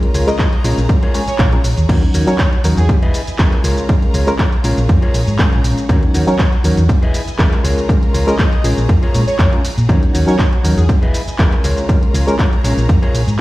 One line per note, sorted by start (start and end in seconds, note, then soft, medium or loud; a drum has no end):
0.00 0.24 G#3 medium
0.00 0.24 C#4 medium
0.00 0.24 F4 medium
0.00 0.63 F4 medium
0.00 0.25 A#4 medium
0.00 2.86 C#5 medium
0.00 1.87 A#5 medium
0.00 muted fingered electric bass stroke soft
0.00 closed hi-hat soft
0.14 0.22 C#2 medium
0.14 0.39 F4 medium
0.14 0.39 G#4 medium
0.14 0.39 A#4 medium
0.14 0.39 C#5 medium
0.14 open hi-hat loud
0.14 shaker medium
0.27 0.35 G#3 medium
0.27 0.35 C#4 medium
0.27 0.35 F4 medium
0.27 0.35 A#4 loud
0.27 0.70 D#5 loud
0.27 closed hi-hat soft
0.27 shaker soft
0.39 kick loud
0.39 clap loud
0.39 closed hi-hat medium
0.39 shaker soft
0.53 closed hi-hat soft
0.64 0.72 A#1 medium
0.64 0.77 G#3 medium
0.64 0.78 C#4 medium
0.64 0.95 F4 loud
0.64 0.78 F4 medium
0.64 0.95 G#4 medium
0.64 1.88 G#4 medium
0.64 0.95 A#4 medium
0.64 0.78 A#4 loud
0.64 0.95 C#5 loud
0.64 open hi-hat loud
0.64 shaker medium
0.78 0.85 A#1 medium
0.78 closed hi-hat soft
0.78 shaker soft
0.89 kick loud
0.89 closed hi-hat medium
0.89 shaker soft
1.02 1.21 F4 loud
1.02 1.21 G#4 loud
1.02 1.21 A#4 loud
1.02 1.21 C#5 loud
1.02 closed hi-hat soft
1.14 1.22 G#3 medium
1.14 1.22 C#4 medium
1.14 1.23 F4 medium
1.14 1.23 C#5 loud
1.14 1.38 G#5 medium
1.14 open hi-hat loud
1.14 shaker medium
1.27 1.35 C#5 medium
1.27 muted fingered electric bass stroke soft
1.27 closed hi-hat soft
1.27 shaker soft
1.39 1.55 A#1 loud
1.39 1.52 F4 medium
1.39 1.52 G#4 medium
1.39 1.52 A#4 medium
1.39 1.48 C#5 medium
1.39 1.52 C#5 loud
1.39 1.62 F5 medium
1.39 kick loud
1.39 clap loud
1.39 closed hi-hat medium
1.39 shaker soft
1.52 1.60 G#3 loud
1.52 1.60 C#4 medium
1.52 1.60 F4 medium
1.52 1.60 A#4 loud
1.52 closed hi-hat soft
1.64 1.72 A#1 medium
1.64 1.67 C#5 medium
1.64 muted clean electric guitar stroke soft
1.64 open hi-hat loud
1.64 shaker medium
1.77 1.85 D#2 medium
1.77 closed hi-hat soft
1.77 shaker soft
1.89 2.05 D#2 loud
1.89 2.24 F#3 medium
1.89 2.24 C#4 medium
1.89 2.02 D#4 loud
1.89 2.24 D#4 medium
1.89 2.89 D#4 medium
1.89 2.02 F#4 loud
1.89 2.02 A#4 loud
1.89 2.25 A#4 loud
1.89 2.02 C#5 loud
1.89 2.89 F#5 medium
1.89 kick loud
1.89 closed hi-hat medium
1.89 crash medium
1.89 shaker soft
2.03 closed hi-hat soft
2.14 2.22 D#2 medium
2.14 2.39 D#4 medium
2.14 2.39 F#4 medium
2.14 2.39 A#4 medium
2.14 2.39 C#5 medium
2.14 open hi-hat loud
2.14 shaker medium
2.27 2.35 F#3 loud
2.27 2.35 C#4 medium
2.27 2.35 D#4 medium
2.27 2.35 A#4 loud
2.27 2.47 C#5 medium
2.27 closed hi-hat soft
2.27 shaker soft
2.39 kick loud
2.39 clap loud
2.39 closed hi-hat medium
2.39 shaker soft
2.53 closed hi-hat soft
2.64 2.72 D#2 medium
2.64 2.77 F#3 medium
2.64 2.77 C#4 medium
2.64 2.83 D#4 medium
2.64 2.78 D#4 medium
2.64 2.83 F#4 medium
2.64 2.83 A#4 medium
2.64 2.78 A#4 medium
2.64 2.83 C#5 loud
2.64 open hi-hat loud
2.64 shaker medium
2.77 2.88 E2 medium
2.77 2.95 G#4 medium
2.77 closed hi-hat soft
2.77 shaker soft
2.89 3.64 E4 medium
2.89 3.64 D#5 medium
2.89 3.64 G#5 medium
2.89 muted fingered electric bass stroke soft
2.89 kick loud
2.89 closed hi-hat medium
2.89 shaker soft
3.02 3.10 E1 loud
3.02 3.21 E4 loud
3.02 3.21 G#4 loud
3.02 3.21 B4 loud
3.02 3.21 D#5 loud
3.02 closed hi-hat soft
3.14 open hi-hat loud
3.14 shaker medium
3.27 muted fingered electric bass stroke soft
3.27 closed hi-hat soft
3.27 shaker soft
3.39 3.47 E1 medium
3.39 3.86 G#3 medium
3.39 3.86 C#4 medium
3.39 3.52 E4 medium
3.39 3.86 F4 medium
3.39 3.52 G#4 medium
3.39 3.87 A#4 loud
3.39 3.52 B4 medium
3.39 3.52 D#5 medium
3.39 kick loud
3.39 clap loud
3.39 closed hi-hat medium
3.39 shaker soft
3.52 clap soft
3.52 closed hi-hat soft
3.64 3.72 C#2 medium
3.64 4.05 F4 medium
3.64 4.63 F4 medium
3.64 4.05 G#4 medium
3.64 4.05 A#4 medium
3.64 6.86 C#5 medium
3.64 4.05 C#5 loud
3.64 4.63 A#5 medium
3.64 open hi-hat loud
3.64 shaker medium
3.77 closed hi-hat soft
3.77 shaker soft
3.89 4.24 G#3 medium
3.89 4.24 C#4 medium
3.89 4.24 F4 medium
3.89 4.24 A#4 loud
3.89 kick loud
3.89 closed hi-hat medium
3.89 shaker soft
4.02 muted fingered electric bass stroke soft
4.02 closed hi-hat soft
4.14 4.22 C#2 medium
4.14 4.39 F4 medium
4.14 4.39 G#4 medium
4.14 4.39 A#4 medium
4.14 4.39 C#5 medium
4.14 open hi-hat loud
4.14 shaker medium
4.27 4.35 G#3 medium
4.27 4.35 C#4 medium
4.27 4.35 F4 medium
4.27 4.35 A#4 loud
4.27 closed hi-hat soft
4.27 shaker soft
4.39 kick loud
4.39 clap loud
4.39 closed hi-hat medium
4.39 shaker soft
4.52 closed hi-hat soft
4.64 4.72 A#1 medium
4.64 4.77 G#3 medium
4.64 4.77 C#4 medium
4.64 4.94 F4 medium
4.64 4.78 F4 medium
4.64 4.94 G#4 medium
4.64 5.88 G#4 medium
4.64 4.94 A#4 medium
4.64 4.78 A#4 medium
4.64 4.94 C#5 loud
4.64 5.88 A#5 medium
4.64 open hi-hat loud
4.64 shaker medium
4.77 4.85 A#1 loud
4.77 closed hi-hat soft
4.77 shaker soft
4.89 4.97 F2 medium
4.89 kick loud
4.89 closed hi-hat medium
4.89 shaker soft
5.02 5.21 F4 loud
5.02 5.21 G#4 loud
5.02 5.21 A#4 loud
5.02 5.21 C#5 loud
5.02 closed hi-hat soft
5.14 5.22 A#1 medium
5.14 open hi-hat loud
5.14 shaker medium
5.27 5.42 G#2 medium
5.27 closed hi-hat soft
5.27 shaker soft
5.39 5.86 G#3 medium
5.39 5.86 C#4 medium
5.39 5.52 F4 medium
5.39 5.87 F4 medium
5.39 5.52 G#4 medium
5.39 5.52 A#4 medium
5.39 5.87 A#4 loud
5.39 5.52 C#5 loud
5.39 kick loud
5.39 clap loud
5.39 closed hi-hat medium
5.39 shaker soft
5.52 5.60 A#1 medium
5.52 closed hi-hat soft
5.64 5.72 A#1 loud
5.64 muted clean electric guitar stroke soft
5.64 open hi-hat loud
5.64 shaker medium
5.78 closed hi-hat soft
5.78 shaker soft
5.89 6.05 D#2 loud
5.89 6.24 F#3 medium
5.89 6.24 C#4 medium
5.89 6.02 D#4 loud
5.89 6.24 D#4 medium
5.89 6.88 D#4 medium
5.89 6.02 F#4 loud
5.89 6.02 A#4 loud
5.89 6.25 A#4 medium
5.89 6.02 C#5 loud
5.89 6.88 F#5 medium
5.89 kick loud
5.89 closed hi-hat medium
5.89 shaker soft
6.03 closed hi-hat soft
6.14 6.22 D#2 medium
6.14 6.39 D#4 medium
6.14 6.39 F#4 medium
6.14 6.39 A#4 medium
6.14 6.39 C#5 medium
6.14 open hi-hat loud
6.14 shaker medium
6.27 6.35 F#3 loud
6.27 6.35 C#4 medium
6.27 6.35 D#4 medium
6.27 6.35 A#4 loud
6.27 6.47 C#5 loud
6.27 closed hi-hat soft
6.27 shaker soft
6.39 kick loud
6.39 clap loud
6.39 closed hi-hat medium
6.39 shaker soft
6.53 closed hi-hat soft
6.64 6.72 D#2 medium
6.64 6.77 F#3 medium
6.64 6.78 C#4 medium
6.64 6.83 D#4 medium
6.64 6.78 D#4 medium
6.64 6.83 F#4 medium
6.64 6.78 A#4 loud
6.64 6.83 A#4 medium
6.64 6.83 C#5 loud
6.64 open hi-hat loud
6.64 shaker medium
6.77 6.88 E2 loud
6.77 closed hi-hat soft
6.77 shaker soft
6.89 7.64 E4 medium
6.89 7.64 D#5 medium
6.89 7.64 G#5 medium
6.89 muted fingered electric bass stroke soft
6.89 kick loud
6.89 closed hi-hat medium
6.89 shaker soft
7.02 7.10 E1 loud
7.02 7.21 E4 loud
7.02 7.21 G#4 loud
7.02 7.21 B4 loud
7.02 7.21 D#5 loud
7.02 closed hi-hat soft
7.14 open hi-hat loud
7.14 shaker medium
7.28 muted fingered electric bass stroke soft
7.28 closed hi-hat soft
7.28 shaker soft
7.39 7.47 E1 medium
7.39 7.86 G#3 medium
7.39 7.86 C#4 medium
7.39 7.52 E4 medium
7.39 7.86 F4 medium
7.39 7.52 G#4 medium
7.39 7.87 A#4 loud
7.39 7.52 B4 medium
7.39 7.52 D#5 loud
7.39 kick loud
7.39 clap loud
7.39 closed hi-hat medium
7.39 shaker soft
7.52 clap soft
7.52 closed hi-hat soft
7.64 7.72 C#2 medium
7.64 8.05 F4 medium
7.64 8.63 F4 medium
7.64 8.05 G#4 medium
7.64 8.05 A#4 medium
7.64 8.63 C#5 medium
7.64 8.05 C#5 loud
7.64 9.87 A#5 medium
7.64 open hi-hat loud
7.64 shaker medium
7.78 closed hi-hat soft
7.78 shaker soft
7.89 8.24 G#3 medium
7.89 8.24 C#4 medium
7.89 8.24 F4 medium
7.89 8.24 A#4 loud
7.89 kick loud
7.89 closed hi-hat medium
7.89 shaker soft
8.03 muted fingered electric bass stroke soft
8.03 closed hi-hat soft
8.14 8.22 C#2 medium
8.14 8.39 F4 medium
8.14 8.39 G#4 medium
8.14 8.39 A#4 medium
8.14 8.39 C#5 loud
8.14 open hi-hat loud
8.14 shaker medium
8.27 8.35 G#3 loud
8.27 8.35 C#4 medium
8.27 8.35 F4 medium
8.27 8.35 A#4 loud
8.27 8.70 D#5 loud
8.27 closed hi-hat soft
8.27 shaker soft
8.39 kick loud
8.39 clap loud
8.39 closed hi-hat medium
8.39 shaker soft
8.53 closed hi-hat soft
8.64 8.72 A#1 medium
8.64 8.77 G#3 medium
8.64 8.77 C#4 medium
8.64 8.95 F4 medium
8.64 8.78 F4 medium
8.64 8.94 G#4 medium
8.64 9.88 G#4 medium
8.64 8.78 A#4 medium
8.64 8.95 A#4 medium
8.64 9.88 C#5 medium
8.64 8.95 C#5 loud
8.64 open hi-hat loud
8.64 shaker medium
8.77 8.85 A#1 medium
8.77 closed hi-hat soft
8.77 shaker soft
8.89 8.97 F2 medium
8.89 kick loud
8.89 closed hi-hat medium
8.89 shaker soft
9.02 9.21 F4 loud
9.02 9.21 G#4 loud
9.02 9.21 A#4 loud
9.02 9.21 C#5 loud
9.02 muted fingered electric bass stroke soft
9.02 closed hi-hat soft
9.14 9.22 A#2 loud
9.14 9.22 G#3 medium
9.14 9.23 C#4 medium
9.14 9.23 F4 medium
9.14 9.23 C#5 medium
9.14 open hi-hat loud
9.14 shaker medium
9.27 9.35 C#5 medium
9.27 muted fingered electric bass stroke soft
9.27 closed hi-hat soft
9.27 shaker soft
9.39 9.47 F2 medium
9.39 9.52 F4 medium
9.39 9.53 G#4 medium
9.39 9.52 A#4 medium
9.39 9.48 C#5 medium
9.39 9.53 C#5 medium
9.39 kick loud
9.39 clap loud
9.39 closed hi-hat medium
9.39 shaker soft
9.52 9.60 G#3 loud
9.52 9.60 C#4 medium
9.52 9.60 F4 medium
9.52 9.60 A#4 loud
9.52 closed hi-hat soft
9.64 muted clean electric guitar stroke soft
9.64 muted fingered electric bass stroke soft
9.64 open hi-hat loud
9.64 shaker medium
9.78 9.85 A#2 medium
9.78 closed hi-hat soft
9.78 shaker soft
9.89 10.05 D#2 loud
9.89 10.24 F#3 medium
9.89 10.24 C#4 medium
9.89 10.02 D#4 loud
9.89 10.24 D#4 medium
9.89 10.88 D#4 medium
9.89 10.02 F#4 loud
9.89 10.02 A#4 loud
9.89 10.24 A#4 medium
9.89 10.88 C#5 medium
9.89 10.02 C#5 loud
9.89 10.88 F#5 medium
9.89 kick loud
9.89 closed hi-hat medium
9.89 shaker soft
10.03 closed hi-hat soft
10.13 10.23 D#2 medium
10.13 10.39 D#4 medium
10.13 10.39 F#4 medium
10.13 10.39 A#4 medium
10.13 10.39 C#5 medium
10.13 open hi-hat loud
10.13 shaker medium
10.27 10.34 F#3 loud
10.27 10.35 C#4 medium
10.27 10.35 D#4 medium
10.27 10.35 A#4 loud
10.27 10.47 C#5 loud
10.27 closed hi-hat soft
10.27 shaker soft
10.39 kick loud
10.39 clap loud
10.39 closed hi-hat medium
10.39 shaker soft
10.53 closed hi-hat soft
10.63 10.72 D#2 medium
10.63 10.77 F#3 medium
10.63 10.77 C#4 medium
10.63 10.83 D#4 medium
10.63 10.77 D#4 medium
10.63 10.83 F#4 medium
10.63 10.78 A#4 loud
10.63 10.83 A#4 medium
10.63 10.83 C#5 loud
10.63 open hi-hat loud
10.63 shaker medium
10.77 10.88 E2 medium
10.77 10.94 G#4 medium
10.77 closed hi-hat soft
10.77 shaker soft
10.89 11.64 E4 medium
10.89 11.64 D#5 medium
10.89 11.64 G#5 medium
10.89 muted fingered electric bass stroke soft
10.89 kick loud
10.89 closed hi-hat medium
10.89 shaker soft
11.02 11.10 E1 loud
11.02 11.21 E4 loud
11.02 11.21 G#4 loud
11.02 11.21 B4 loud
11.02 11.21 D#5 loud
11.02 closed hi-hat soft
11.14 open hi-hat loud
11.14 shaker medium
11.27 muted fingered electric bass stroke soft
11.27 closed hi-hat soft
11.27 shaker soft
11.39 11.47 E1 medium
11.39 11.86 G#3 medium
11.39 11.86 C#4 medium
11.39 11.52 E4 medium
11.39 11.86 F4 medium
11.39 11.52 G#4 medium
11.39 11.87 A#4 loud
11.39 11.52 B4 medium
11.39 11.52 D#5 loud
11.39 kick loud
11.39 clap loud
11.39 closed hi-hat medium
11.39 shaker soft
11.52 clap soft
11.52 closed hi-hat soft
11.64 11.72 C#2 medium
11.64 12.05 F4 loud
11.64 12.63 F4 medium
11.64 12.05 G#4 medium
11.64 12.05 A#4 medium
11.64 13.41 C#5 medium
11.64 12.05 C#5 loud
11.64 13.41 A#5 medium
11.64 open hi-hat loud
11.64 shaker medium
11.77 closed hi-hat soft
11.77 shaker soft
11.89 12.24 G#3 medium
11.89 12.24 C#4 medium
11.89 12.24 F4 medium
11.89 12.24 A#4 loud
11.89 kick loud
11.89 closed hi-hat medium
11.89 shaker soft
12.03 muted fingered electric bass stroke soft
12.03 closed hi-hat soft
12.14 12.22 C#2 medium
12.14 12.39 F4 medium
12.14 12.39 G#4 medium
12.14 12.39 A#4 medium
12.14 12.39 C#5 loud
12.14 open hi-hat loud
12.14 shaker medium
12.27 12.35 G#3 medium
12.27 12.35 C#4 medium
12.27 12.35 F4 medium
12.27 12.35 A#4 loud
12.27 closed hi-hat soft
12.27 shaker soft
12.39 kick loud
12.39 clap loud
12.39 closed hi-hat medium
12.39 shaker soft
12.53 closed hi-hat soft
12.64 12.72 A#1 medium
12.64 12.77 G#3 medium
12.64 12.78 C#4 medium
12.64 12.94 F4 medium
12.64 12.78 F4 medium
12.64 12.94 G#4 medium
12.64 13.41 G#4 medium
12.64 12.95 A#4 medium
12.64 12.78 A#4 loud
12.64 12.95 C#5 loud
12.64 open hi-hat loud
12.64 shaker medium
12.77 12.85 A#1 medium
12.77 closed hi-hat soft
12.77 shaker soft
12.89 12.97 F2 medium
12.89 kick loud
12.89 closed hi-hat medium
12.89 shaker soft
13.02 13.21 F4 loud
13.02 13.21 G#4 loud
13.02 13.21 A#4 loud
13.02 13.21 C#5 loud
13.02 closed hi-hat soft
13.14 13.22 A#1 medium
13.14 open hi-hat loud
13.14 shaker medium
13.27 13.41 G#2 medium
13.27 closed hi-hat soft
13.27 shaker soft